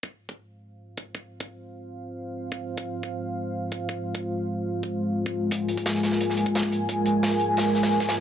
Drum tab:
HH |----------------|----------------|----------------|----------------|
SD |----------------|----------------|----------------|----------------|
BD |o--o-------o-o--|o------------o--|o--o-------o-o--|o-------o----o--|

HH |x-xxx-x-x-x-x-x-|x-x-x-x-x-xx-xx-|
SD |----oooo-o--o---|----oo--ooooooo-|
BD |o--o-------o-o--|o------------o--|